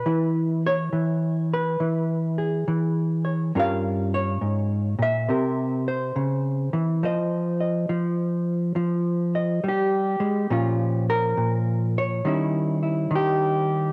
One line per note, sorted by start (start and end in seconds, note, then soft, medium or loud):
0.00 0.65 B4 medium
0.06 0.91 E3 medium
0.06 3.51 E4 medium
0.66 1.52 C#5 medium
0.93 1.79 E3 medium
1.54 2.39 B4 medium
1.80 2.67 E3 medium
2.38 3.51 G#4 soft
2.68 3.51 E3 medium
3.25 3.51 C#5 soft
3.55 4.41 G2 medium
3.55 5.26 C#4 medium
3.55 5.26 F4 soft
3.55 4.13 A#4 medium
3.60 4.14 F5 loud
4.14 5.00 C#5 medium
4.41 4.98 G#2 medium
4.99 5.28 A#2 medium
4.99 5.88 E5 medium
5.29 6.15 C3 medium
5.29 7.03 C4 soft
5.29 7.00 G4 soft
5.29 5.87 A#4 soft
5.88 6.74 C5 medium
6.16 6.73 C#3 medium
6.73 7.03 E3 medium
7.03 7.88 F3 medium
7.03 10.48 C5 medium
7.03 7.60 D#5 medium
7.60 9.35 D#5 soft
7.89 8.75 F3 medium
8.76 9.63 F3 medium
9.35 9.68 D#5 soft
9.64 10.20 G3 medium
9.68 11.09 G4 medium
10.20 10.50 G#3 medium
10.50 11.36 A#2 medium
10.50 12.25 F3 soft
10.50 12.22 C#4 medium
10.50 12.22 F4 medium
11.10 11.96 A#4 loud
11.37 12.21 A#2 medium
11.98 12.84 C#5 medium
12.25 13.09 D#3 medium
12.25 13.93 G3 soft
12.25 13.93 C#4 soft
12.25 12.82 E4 soft
12.83 13.93 E4 soft
13.11 13.93 D#3 medium
13.15 13.93 G4 medium